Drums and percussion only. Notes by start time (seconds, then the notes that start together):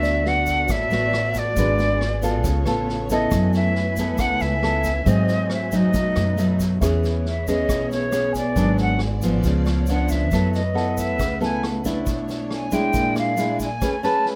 0.03 snare, shaker
0.26 snare
0.46 kick, snare, shaker
0.68 kick, cross-stick, snare, shaker
0.90 snare, shaker
1.13 cross-stick, snare
1.34 kick, snare, shaker
1.56 kick, snare, shaker
1.78 snare, shaker
2.01 cross-stick, snare
2.22 kick, snare, shaker
2.44 kick, snare, shaker
2.66 cross-stick, snare, shaker
2.89 snare
3.10 kick, snare, shaker
3.31 kick, cross-stick, snare, shaker
3.53 snare, shaker
3.75 snare
3.96 kick, snare, shaker
4.18 kick, cross-stick, snare, shaker
4.40 snare, shaker
4.63 cross-stick, snare
4.84 kick, snare, shaker
5.06 kick, snare, shaker
5.28 snare, shaker
5.50 cross-stick, snare
5.72 kick, snare, shaker
5.94 kick, snare, shaker
6.16 cross-stick, snare, shaker
6.38 snare, shaker
6.60 kick, snare, shaker
6.82 kick, cross-stick, snare, shaker
7.04 snare, shaker
7.26 snare
7.47 kick, snare, shaker
7.69 kick, cross-stick, snare, shaker
7.91 snare, shaker
8.12 cross-stick, snare, shaker
8.34 kick, snare, shaker
8.56 kick, snare, shaker
8.78 snare, shaker
8.99 cross-stick, snare
9.22 kick, snare, shaker
9.43 kick, snare, shaker
9.65 cross-stick, snare, shaker
9.86 snare, shaker
10.08 kick, snare, shaker
10.31 kick, cross-stick, snare, shaker
10.53 snare, shaker
10.76 snare
10.97 kick, snare, shaker
11.19 kick, cross-stick, snare, shaker
11.41 snare, shaker
11.63 cross-stick, snare
11.85 kick, snare, shaker
12.06 kick, snare, shaker
12.28 snare, shaker
12.51 cross-stick, snare
12.71 kick, snare, shaker
12.93 kick, snare, shaker
13.16 cross-stick, snare, shaker
13.37 snare, shaker
13.60 kick, snare, shaker
13.81 kick, cross-stick, snare, shaker
14.03 snare, shaker
14.26 snare